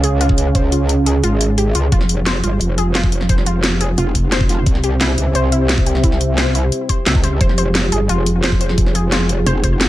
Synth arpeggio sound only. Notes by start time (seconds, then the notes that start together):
0.04 G#4
0.21 F4
0.55 C5
0.72 F4
1.06 G#4
1.24 F4
1.58 G4
1.75 F4
1.92 F4
2.26 C5
2.44 F4
2.78 G#4
2.95 F4
3.29 C5
3.46 F4
3.81 G#4
3.98 F4
4.32 C5
4.49 F4
4.84 G4
5.01 E4
5.35 C5
5.52 E4
5.86 G4
6.04 E4
6.38 C5
6.55 E4
6.89 C5
7.06 E5
7.24 C5
7.41 C5
7.58 C5
7.92 G#4
8.09 F4
8.44 C5
8.61 C5
8.95 G#4
9.12 F4
9.46 C5
9.64 C5